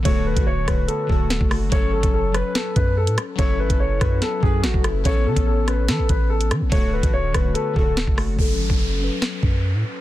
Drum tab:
HH |x--x--x-x---x-o-|x--x--x-x-x--xx-|x--x--x-x---x-x-|x--x--x-x-x--xx-|
SD |------r-----o-r-|------r-o-----r-|------r-o---o-r-|------r-o-----r-|
BD |o--o--o---o--o--|o--o------o-----|o--o--o---o--o--|o--o------o-----|

HH |x--x--x-x---x-o-|----------------|
SD |------r-----o-r-|--------o-------|
BD |o--o--o---o--o--|o--o------o-----|